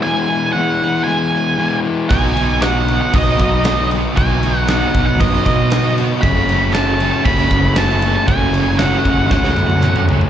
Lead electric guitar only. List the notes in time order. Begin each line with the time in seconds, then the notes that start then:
0.03 G#5
0.53 F#5
1.04 G#5
2.09 G#5
2.63 F#5
3.01 F#5
3.14 D#5
3.41 D#5
4.17 G#5
4.59 F#5
4.70 F#5
5.06 F#5
5.20 D#5
5.46 D#5
6.22 B5
6.74 A5
7.11 A5
7.24 B5
7.78 A5
8.16 A5
8.28 G#5
8.79 F#5
9.33 F#5